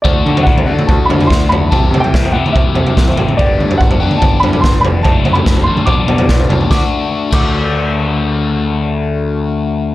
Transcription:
<<
  \new Staff \with { instrumentName = "Upright piano" } { \time 4/4 \key d \mixolydian \tempo 4 = 145 d''4 fis''4 a''8 b''8 c'''8 b''8 | a''8. g''8. fis''8 e''4. r8 | d''4 fis''4 a''8 b''8 c'''8 b''8 | a''8. b''8. c'''8 d'''4. r8 |
d'''16 r4 r16 d'''2~ d'''8~ | d'''1 | }
  \new Staff \with { instrumentName = "Overdriven electric guitar" } { \time 4/4 \key d \mixolydian <a d' fis'>4. <a d' fis'>2~ <a d' fis'>8 | <e c' e' g'>4. <e c' e' g'>2~ <e c' e' g'>8 | <b d' g'>4. <b d' g'>2~ <b d' g'>8 | <fis a d'>4. <fis a d'>8 <fis b d'>4. <fis b d'>8 |
<a d' fis'>8 r4 <a d' fis'>2~ <a d' fis'>8~ | <a d' fis'>1 | }
  \new Staff \with { instrumentName = "Picked electric bass" } { \clef bass \time 4/4 \key d \mixolydian d,8 d8 d,8 d16 r16 d,8 d8 d,8 d,8 | c,8 c8 c,8 c16 r16 c,8 c8 c,8 a,,8 | g,,8 g,8 g,,8 g,16 r16 g,,8 g,8 g,,8 f,,8 | fis,,8 fis,8 fis,,8 fis,16 r16 b,,8 b,8 b,,8 c,8 |
d,8 r4 d,2~ d,8~ | d,1 | }
  \new DrumStaff \with { instrumentName = "Drums" } \drummode { \time 4/4 <bd tomfh>8 toml16 tomfh16 bd16 tomfh8 toml16 <bd tomfh toml>8 tomfh16 tomfh16 <bd sn>8 tomfh8 | <bd tomfh>8 <tomfh toml>16 tomfh16 <bd sn>16 tomfh8 toml16 <bd tomfh>8 tomfh16 tomfh16 <bd sn>16 tomfh16 tomfh16 toml16 | <bd tomfh>8 toml16 tomfh16 bd16 tomfh8 toml16 <bd tomfh toml>8 tomfh16 tomfh16 <bd sn>8 tomfh8 | <bd tomfh>8 <tomfh toml>16 tomfh16 <bd sn>16 tomfh8 toml16 <bd tomfh>8 tomfh16 tomfh16 <bd sn>16 tomfh16 tomfh16 toml16 |
<bd sn>4 r8 <cymc bd>8 r4 r4 | r4 r4 r4 r4 | }
>>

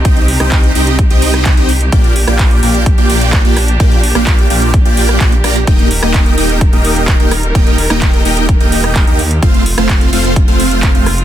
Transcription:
<<
  \new Staff \with { instrumentName = "Supersaw synth" } { \time 4/4 \key bes \major \tempo 4 = 128 <c' ees' g' ees'' g''>8 r16 <c' ees' g' ees'' g''>8. <c' ees' g' ees'' g''>8 r16 <c' ees' g' ees'' g''>4 <c' ees' g' ees'' g''>16 r8 | <bes f' g' d'' g''>8 r16 <bes f' g' d'' g''>8. <bes f' g' d'' g''>8 r16 <bes f' g' d'' g''>4 <bes f' g' d'' g''>16 r8 | <bes f' g' d'' g''>8 r16 <bes f' g' d'' g''>8. <bes f' g' d'' g''>8 r16 <bes f' g' d'' g''>8. <bes f' g' d'' g''>16 r16 <bes f' g' d'' bes''>16 r16 | <bes ees' g' ees'' g''>8 r16 <bes ees' g' ees'' g''>8. <bes ees' g' ees'' g''>8 r16 <bes ees' g' ees'' g''>4 <bes ees' g' ees'' g''>16 r8 |
<bes ees' g' ees'' g''>8 r16 <bes ees' g' ees'' g''>8. <bes ees' g' ees'' g''>8 r16 <bes ees' g' ees'' g''>4 <bes ees' g' ees'' g''>16 r8 | <a c' f' c'' f''>8 r16 <a c' f' c'' f''>8. <a c' f' c'' f''>8 r16 <a c' f' c'' f''>4 <a c' f' c'' f''>16 r8 | }
  \new Staff \with { instrumentName = "String section" } { \time 4/4 \key bes \major << { g'1~ | g'1~ | g'1 | bes'1~ |
bes'1 | f'1 | } \\ { <c c' ees'>1 | <bes d'>1~ | <bes d'>1 | <ees ees'>1~ |
<ees ees'>1 | <a c'>1 | } >> }
  \new Staff \with { instrumentName = "Detuned saw bass" } { \clef bass \time 4/4 \key bes \major c,8. c,8. c,8. c,4 c,8. | bes,,8. bes,,8. bes,,8. bes,,4 bes,,8. | bes,,8. bes,,8. bes,,8. bes,,8. bes,,8 bes,,8 | ees,,8. ees,,8. ees,,8. ees,,4 ees,,8. |
ees,,8. ees,,8. ees,,8. ees,,4 ees,8. | f,,8. f,,8. f,,8. f,,4 f,,8. | }
  \new DrumStaff \with { instrumentName = "Drums" } \drummode { \time 4/4 <hh bd>16 hh16 hho16 <hh ss>16 <hc hh bd>16 hh16 hho16 hh16 <hh bd>16 hh16 hho16 <hh ss>16 <hc hh bd>16 hh16 hho16 hh16 | <hh bd>16 hh16 hho16 <hh ss>16 <hc hh bd>16 hh16 hho16 hh16 <hh bd>16 hh16 hho16 hh16 <hc hh bd>16 hh16 <hho ss>16 hh16 | <hh bd>16 hh16 hho16 <hh ss>16 <hc hh bd>16 hh16 hho16 hh16 <hh bd>16 hh16 hho16 <hh ss>16 <hc hh bd>16 hh16 <hho ss>16 hh16 | <hh bd>16 hh16 hho16 ss16 <hc hh bd>16 hh16 hho16 hh16 <hh bd>16 hh16 hho16 hh16 <hc hh bd>16 hh16 <hho ss>16 hh16 |
<hh bd>16 hh16 hho16 <hh ss>16 <hc hh bd>16 hh16 hho16 hh16 <hh bd>16 hh16 hho16 <hh ss>16 <hc hh bd>16 hh16 hho16 hh16 | <hh bd>16 hh16 hho16 <hh ss>16 <hc hh bd>16 hh16 hho16 hh16 <hh bd>16 hh16 hho16 hh16 <hc hh bd>16 hh16 <hho ss>16 hh16 | }
>>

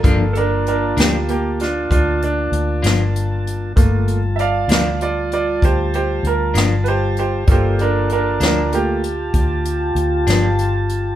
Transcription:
<<
  \new Staff \with { instrumentName = "Upright piano" } { \time 12/8 \key g \minor \tempo 4. = 65 << { r8 <d' a' bes'>8 <d' bes'>8 <bes g'>8 <bes g'>8 <d' f'>8 <d' f'>8 d'2~ d'8~ | d'8 r8 <d'' e'' f''>8 <d'' f''>8 <f' d''>8 <f' d''>8 <g' c''>8 <g' c''>8 bes'8 r8 <g' b' c''>8 <g' c''>8 | <g' c''>8 <d' bes'>8 <d' bes'>8 <d' bes'>8 g'2 r2 | } \\ { <bes f' a'>4. r1 r8 | <a bes f'>8 r1 r4. | <bes f' a'>4. r8 <a bes f'>8 r2. r8 | } >> }
  \new Staff \with { instrumentName = "Tonewheel organ" } { \time 12/8 \key g \minor <bes f' a''>1. | <g f' a''>1. | <f' g' d''>8 <f' g' a''>1~ <f' g' a''>4. | }
  \new Staff \with { instrumentName = "Clean electric guitar" } { \clef bass \time 12/8 \key g \minor <g, f bes d'>8 r4 <g, f bes d'>8 r2 r8 <g, f bes d'>8 r4 | r4. <g, f bes d'>8 r2 r8 <g, f bes d'>8 r4 | r4. <g, f bes d'>8 r2 r8 <g, f bes d'>8 r4 | }
  \new Staff \with { instrumentName = "Fingered electric bass" } { \clef bass \time 12/8 \key g \minor g,,4. d,4. d,4 d,8 g,,4. | g,,4. d,4. d,4 d,8 g,,4. | g,,4. d,4. d,4 d,8 g,,4. | }
  \new DrumStaff \with { instrumentName = "Drums" } \drummode { \time 12/8 <hh bd>8 hh8 hh8 <hh sn>8 hh8 <hh sn>8 <hh bd>8 hh8 hh8 <hh sn>8 hh8 hh8 | <hh bd>8 hh8 hh8 <hh sn>8 hh8 hh8 <hh bd>8 hh8 hh8 <hh sn>8 hh8 hh8 | <hh bd>8 hh8 hh8 <hh sn>8 hh8 hh8 <hh bd>8 hh8 hh8 <hh sn>8 hh8 hh8 | }
>>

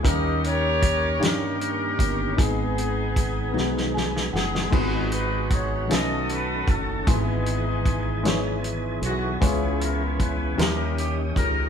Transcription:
<<
  \new Staff \with { instrumentName = "Horn section" } { \time 6/8 \key gis \minor \tempo 4. = 51 << { dis''8 cis''4 ais'4. | gis'2 r8 gis'8 | b'8 b'8 cis''8 dis''8 b'8 a'8 | gis'2 r8 fis'8 |
gis'8 ais'8 b'8 ais'8 g'8 ais'8 | } \\ { <g' ais'>8 <g' ais'>4 <cis' g'>4. | <b dis'>2 r4 | <dis' fis'>4. <fis' a'>4. | <b dis'>2 r4 |
<b e'>4. <cis' g'>4. | } >> }
  \new Staff \with { instrumentName = "Grand piano" } { \time 6/8 \key gis \minor <g ais cis' dis' ais'>4~ <g ais cis' dis' ais'>16 r16 <g ais cis' dis' cis''>4~ <g ais cis' dis' cis''>16 r16 | <b dis' gis'>4~ <b dis' gis'>16 r16 <b dis' fis'>4~ <b dis' fis'>16 r16 | <gis b dis' fis' b'>4~ <gis b dis' fis' b'>16 r16 <a cis' dis' b' gis''>4~ <a cis' dis' b' gis''>16 r16 | <e gis b dis' b'>4~ <e gis b dis' b'>16 r16 <e gis b dis' cis''>4~ <e gis b dis' cis''>16 r16 |
<gis b cis' e' cis''>4~ <gis b cis' e' cis''>16 r16 <g cis' dis' e' ais'>4~ <g cis' dis' e' ais'>16 r16 | }
  \new Staff \with { instrumentName = "Grand piano" } { \clef bass \time 6/8 \key gis \minor dis4. r4. | gis,4. r8 gis''8 fis''8 | gis,4. b,4. | gis,4. r4. |
cis4. dis4. | }
  \new Staff \with { instrumentName = "Tonewheel organ" } { \time 6/8 \key gis \minor <dis ais cis' g'>2. | <dis gis b fis' gis'>2. | <dis gis b e' fis'>4. <dis a cis' a'>4. | <e b dis' fis' gis'>2. |
<e b cis' g' gis'>4. <dis cis' g' dis''>4. | }
  \new Staff \with { instrumentName = "Fingered electric bass" } { \clef bass \time 6/8 \key gis \minor dis,4. g,4 g,,8 | gis,,4. b,,4 fis,,8 | gis,,4. b,,4 fis,,8 | gis,,2~ gis,,8 b,,8 |
cis,4. dis,4 cis,8 | }
  \new DrumStaff \with { instrumentName = "Drums" } \drummode { \time 6/8 <hh bd>8 hh8 <hh bd>8 <hh sn>8 hh8 <hh bd>8 | <hh bd>8 hh8 <hh bd>8 sn16 sn16 sn16 sn16 sn16 sn16 | <cymc bd>8 hh8 <hh bd>8 <hh sn>8 hh8 <hh bd>8 | <hh bd>8 hh8 <hh bd>8 <hh sn>8 hh8 hh8 |
<hh bd>8 hh8 <hh bd>8 <hh sn>8 hh8 <hh bd>8 | }
>>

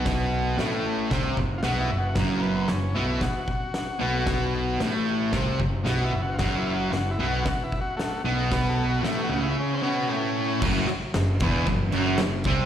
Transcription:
<<
  \new Staff \with { instrumentName = "Transistor combo organ" } { \time 4/4 \key fis \minor \tempo 4 = 114 r2. \tuplet 3/2 { <eis' fis'>8 e'8 fis'8 } | r8 <ais b>8 cis'8 e'8 fis'2 | r2. \tuplet 3/2 { <eis' fis'>8 e'8 fis'8 } | \tuplet 3/2 { <eis' fis'>8 e'8 fis'8 <eis' fis'>8 e'8 fis'8 <eis' fis'>8 e'8 fis'8 } <a fis'>8 r8 |
\tuplet 3/2 { b'8 a'8 fis'8 e'8 fis'8 e'8 cis'8 <bis cis'>4~ } <bis cis'>4 | r1 | }
  \new Staff \with { instrumentName = "Distorted electric guitar" } { \clef bass \time 4/4 \key fis \minor <b, b>4 <a, a>4 <bis, bis>8 fis,8 <b, b>8 fis,8 | <fis, fis>4 fis,8 <b, b>8 r4. <b, b>8~ | <b, b>4 <a, a>4 <bis, bis>8 fis,8 <b, b>8 fis,8 | <fis, fis>4 fis,8 <b, b>8 r4. <b, b>8~ |
<b, b>4 <a, a>8 <cis cis'>4 <b, b>8 <a, a>4 | <fis, fis>8 r8 fis,8 <e, e>8 fis,8 <fis, fis>8 fis,8 <bis, bis>8 | }
  \new Staff \with { instrumentName = "Picked electric bass" } { \clef bass \time 4/4 \key fis \minor b,,4 a,,4 bis,,8 fis,,8 b,,8 fis,,8 | fis,,4 fis,,8 b,,8 r4. b,,8~ | b,,4 a,,4 bis,,8 fis,,8 b,,8 fis,,8 | fis,,4 fis,,8 b,,8 r4. b,,8~ |
b,,4 a,,8 cis,8 r2 | fis,,8 r8 fis,,8 e,,8 fis,,8 fis,,8 fis,,8 bis,,8 | }
  \new DrumStaff \with { instrumentName = "Drums" } \drummode { \time 4/4 <hho bd sn>4 <hho sn>4 <hho bd sn>8 bd8 <hho sn>4 | <hho bd sn>4 <hho sn>4 <hho bd sn>8 bd8 <hho sn>4 | <hho bd sn>4 <hho sn>4 <hho bd sn>8 bd8 <hho sn>4 | <hho bd sn>4 <hho sn>4 <hho bd sn>8 bd8 <hho sn>4 |
<hho bd sn>4 <hho sn>4 r4 r4 | <cymc bd>8 cymr8 <cymr sn>8 <bd cymr>8 <bd cymr>8 cymr8 <cymr sn>8 <bd cymr>8 | }
>>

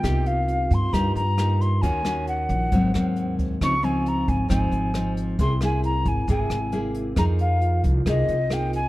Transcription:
<<
  \new Staff \with { instrumentName = "Flute" } { \time 4/4 \key c \phrygian \tempo 4 = 135 g''8 f''4 c'''8 bes''8 bes''4 c'''8 | aes''4 ges''2~ ges''8 r8 | des'''8 aes''8 bes''8 aes''8 aes''4. r8 | c'''8 gis''8 bes''8 gis''8 gis''4. r8 |
bes''8 f''4 r8 ees''4 g''8 aes''8 | }
  \new Staff \with { instrumentName = "Vibraphone" } { \time 4/4 \key c \phrygian f'8 r2. r8 | r1 | r1 | e'2.~ e'8 r8 |
r4 f'2. | }
  \new Staff \with { instrumentName = "Nylon-string guitar" } { \time 4/4 \key c \phrygian << { <bes ees' g'>2 <bes ees' g'>8 r8 <bes ees' g'>4 | <bes des' ges'>8 <bes des' ges'>4. <ges bes c'>8 <ges bes c'>4. | <f c' ees'>8 <f c' ees'>4. <f c' ees'>4 <f c' ees'>4 | <bes e' gis'>8 <bes e' gis'>4. <bes e' gis'>8 r8 <bes e' gis'>4 |
<bes ees' aes'>2 <bes ees' aes'>8 r8 <bes ees' aes'>8 r8 | } \\ { c2 g,2 | ees2 aes,2 | des2 aes,2 | c2 c2 |
f2 c2 | } >> }
  \new Staff \with { instrumentName = "Upright bass" } { \clef bass \time 4/4 \key c \phrygian c,4. g,8 g,8 g,4. | ees,4. bes,,8 aes,,8 ees,4. | des,4. aes,,8 aes,,8 aes,,4. | c,4. gis,,8 gis,,8 gis,,4. |
f,4. c,8 c,8 c,4. | }
  \new DrumStaff \with { instrumentName = "Drums" } \drummode { \time 4/4 <hh bd ss>8 hh8 hh8 <hh bd>8 <hh bd ss>8 hh8 <hh ss>8 hh8 | <hh bd>8 <hh ss>8 hh8 hh8 <hh bd>8 <hh ss>8 hh8 <hh bd>8 | <hh bd ss>8 hh8 hh8 <hh bd>8 <hh bd ss>8 hh8 <hh ss>8 hh8 | <hh bd>8 <hh ss>8 hh8 <hh bd>8 <hh bd>8 <hh ss>8 hh8 hh8 |
<hh bd ss>8 hh8 hh8 <hh bd>8 <hh bd ss>8 hh8 <hh ss>8 hh8 | }
>>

